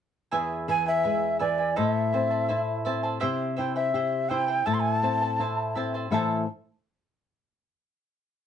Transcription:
0.31 1.73 E2 medium
0.31 0.67 E4 medium
0.31 0.68 G#4 medium
0.31 0.68 B4 medium
0.31 0.67 E5 medium
0.31 0.68 G#5 medium
0.68 1.03 E3 medium
0.68 0.86 E4 medium
0.68 0.85 B4 medium
0.68 0.86 E5 soft
0.68 0.85 G#5 medium
0.86 1.03 E4 soft
0.86 1.03 B4 soft
0.86 1.38 E5 medium
0.86 1.03 G#5 soft
1.03 1.40 G#3 soft
1.03 1.39 E4 soft
1.03 1.39 B4 medium
1.03 1.38 E5 soft
1.03 1.39 G#5 soft
1.39 1.76 E3 soft
1.39 1.58 E4 medium
1.39 1.58 B4 medium
1.39 1.78 D5 medium
1.39 1.58 E5 medium
1.39 1.57 G#5 medium
1.58 1.75 E4 soft
1.58 1.76 B4 soft
1.58 1.76 G#5 soft
1.76 3.18 A2 medium
1.76 2.12 E4 medium
1.76 2.12 A4 medium
1.76 2.13 C5 medium
1.76 1.91 D#5 medium
1.76 2.11 E5 medium
1.76 2.13 A5 medium
1.91 2.85 E5 medium
2.13 2.49 C4 medium
2.13 2.30 E4 soft
2.13 2.30 C5 medium
2.13 2.31 E5 soft
2.13 2.29 A5 medium
2.30 2.47 E4 soft
2.30 2.48 C5 soft
2.30 2.49 A5 soft
2.48 2.84 E4 medium
2.48 2.85 E4 soft
2.48 2.85 C5 medium
2.48 2.84 E5 soft
2.48 2.85 A5 medium
2.85 3.21 C4 soft
2.85 3.04 E4 medium
2.85 3.02 C5 medium
2.85 3.03 E5 medium
2.85 3.02 A5 medium
3.03 3.19 E4 soft
3.03 3.20 C5 soft
3.03 3.21 A5 medium
3.20 4.63 C3 medium
3.20 3.56 E4 medium
3.20 3.57 G4 medium
3.20 3.57 C5 medium
3.20 3.55 E5 medium
3.20 3.57 G5 medium
3.56 3.76 E4 soft
3.56 3.94 E4 soft
3.56 3.75 C5 medium
3.56 3.75 E5 soft
3.56 3.75 G5 medium
3.76 3.93 E4 soft
3.76 3.93 C5 soft
3.76 4.30 E5 medium
3.76 3.94 G5 medium
3.94 4.29 E4 soft
3.94 4.29 G4 soft
3.94 4.29 C5 medium
3.94 4.28 E5 medium
3.94 4.30 G5 medium
4.29 4.48 E4 medium
4.29 4.66 E4 medium
4.29 4.47 C5 medium
4.29 4.48 E5 medium
4.29 4.67 G5 medium
4.29 4.47 G5 medium
4.48 4.65 E4 soft
4.48 4.65 C5 soft
4.48 4.67 G5 soft
4.66 6.08 A2 medium
4.66 5.02 E4 medium
4.66 5.02 A4 medium
4.66 5.02 C5 medium
4.66 5.02 E5 medium
4.66 4.75 A5 medium
4.66 5.03 A5 medium
4.74 4.81 C6 medium
4.80 4.95 G#5 medium
4.95 5.75 A5 medium
5.03 5.38 C4 soft
5.03 5.21 E4 medium
5.03 5.20 C5 soft
5.03 5.21 E5 soft
5.03 5.20 A5 medium
5.21 5.39 E4 soft
5.21 5.39 C5 soft
5.21 5.39 A5 medium
5.39 5.75 E4 soft
5.39 5.76 C5 soft
5.39 5.74 E5 soft
5.39 5.76 A5 medium
5.75 6.11 C4 medium
5.75 5.94 E4 medium
5.75 5.94 C5 medium
5.75 5.94 E5 medium
5.75 5.93 A5 medium
5.94 6.12 E4 soft
5.94 6.12 C5 soft
5.94 6.12 A5 soft
6.11 6.45 A2 soft
6.11 6.45 E3 soft
6.11 6.45 A3 soft
6.11 6.45 E4 soft
6.11 6.41 E4 medium
6.11 6.41 A4 medium
6.11 6.46 C5 soft
6.11 6.42 C5 medium
6.11 6.41 E5 medium
6.11 6.46 E5 medium
6.11 6.46 A5 medium
6.11 6.42 A5 medium

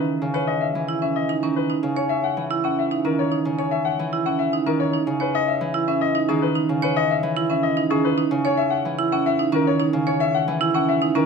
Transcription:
0.00 0.20 C#3 medium
0.00 1.42 D#3 medium
0.00 0.74 E3 medium
0.00 0.11 B4 medium
0.22 1.72 C#3 medium
0.34 0.52 B4 medium
0.34 0.52 C#5 medium
0.47 0.65 D#5 medium
0.61 0.79 E5 medium
0.75 1.72 E3 soft
0.89 1.06 E4 medium
1.02 1.19 C#4 soft
1.02 1.19 E5 soft
1.16 1.33 D#5 soft
1.29 1.47 D#4 medium
1.43 1.72 D#3 soft
1.43 1.60 C#4 medium
1.56 1.74 B4 soft
1.70 1.87 D#4 medium
1.83 3.44 C#3 medium
1.96 2.14 C#5 soft
1.96 2.14 C#5 medium
2.09 2.27 E5 medium
2.24 2.41 F#5 medium
2.37 3.98 E3 medium
2.51 2.68 E4 medium
2.64 2.82 C#4 medium
2.64 2.82 F#5 medium
2.79 2.95 E5 soft
2.91 3.09 D#4 medium
3.05 4.65 D#3 medium
3.05 3.22 C#4 medium
3.05 3.22 A#4 medium
3.19 3.36 C#5 medium
3.32 3.49 D#4 medium
3.45 4.96 C#3 medium
3.58 3.76 C#5 medium
3.71 3.89 E5 medium
3.85 4.03 F#5 medium
3.99 4.96 E3 medium
4.13 4.30 E4 medium
4.26 4.44 C#4 medium
4.26 4.44 F#5 medium
4.39 4.57 E5 medium
4.53 4.71 D#4 medium
4.66 4.96 D#3 medium
4.66 4.84 C#4 medium
4.66 4.84 A#4 medium
4.80 4.98 C#5 medium
4.93 5.11 D#4 medium
5.07 6.68 C#3 medium
5.20 5.38 B4 medium
5.20 5.38 C#5 medium
5.35 5.52 D#5 medium
5.48 5.65 E5 medium
5.61 7.22 E3 medium
5.74 5.92 E4 medium
5.88 6.06 C#4 medium
5.88 6.06 E5 medium
6.01 6.19 D#5 medium
6.15 6.33 D#4 medium
6.28 7.89 D#3 medium
6.28 6.46 C#4 medium
6.28 6.46 G#4 medium
6.42 6.60 B4 medium
6.55 6.73 D#4 medium
6.69 8.20 C#3 medium
6.82 7.00 B4 medium
6.82 7.00 C#5 medium
6.96 7.14 D#5 medium
7.11 7.28 E5 medium
7.23 8.20 E3 medium
7.37 7.54 E4 medium
7.50 7.68 C#4 medium
7.50 7.68 E5 medium
7.63 7.81 D#5 medium
7.77 7.95 D#4 medium
7.90 8.20 D#3 medium
7.90 8.08 C#4 medium
7.90 8.08 G#4 medium
8.05 8.22 B4 medium
8.18 8.35 D#4 medium
8.31 9.92 C#3 medium
8.45 8.62 C#5 medium
8.45 8.63 C#5 medium
8.57 8.76 E5 medium
8.70 8.89 F#5 medium
8.85 10.47 E3 medium
8.99 9.16 E4 medium
9.12 9.30 C#4 medium
9.12 9.30 F#5 medium
9.26 9.44 E5 medium
9.39 9.57 D#4 medium
9.52 11.14 D#3 medium
9.52 9.70 C#4 medium
9.52 9.71 A#4 medium
9.67 9.84 C#5 medium
9.80 9.97 D#4 medium
9.93 11.26 C#3 medium
10.07 10.25 C#5 medium
10.20 10.38 E5 medium
10.34 10.52 F#5 medium
10.48 11.26 E3 medium
10.61 10.79 E4 medium
10.75 10.92 C#4 medium
10.75 10.92 F#5 medium
10.89 11.06 E5 medium
11.02 11.19 D#4 medium
11.15 11.26 D#3 medium
11.15 11.26 C#4 medium
11.15 11.26 A#4 medium

